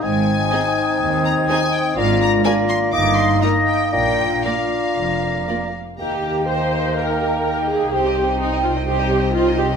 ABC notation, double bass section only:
X:1
M:4/4
L:1/8
Q:1/4=124
K:Eb
V:1 name="Double bass section" clef=bass
A,,,2 z2 E,,2 z2 | A,,,2 z2 G,,,2 z2 | B,,,2 z2 F,,,2 z2 | E,,8 |
C,,8 |]